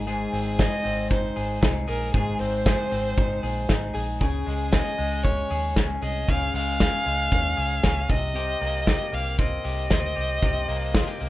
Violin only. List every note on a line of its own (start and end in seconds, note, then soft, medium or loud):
0.07 0.60 G#4 medium
0.58 1.10 D#5 loud
1.11 1.59 C5 medium
1.88 2.12 A#4 medium
2.14 2.41 G#4 medium
2.39 3.93 C5 medium
3.94 4.06 G#4 medium
4.21 4.74 G#4 medium
4.72 5.25 D#5 medium
5.23 5.76 C#5 medium
6.03 6.31 D#5 medium
6.30 6.55 F5 loud
6.56 8.12 F5 loud
8.11 9.16 D#5 loud
9.14 9.40 F5 medium
9.40 11.29 D#5 medium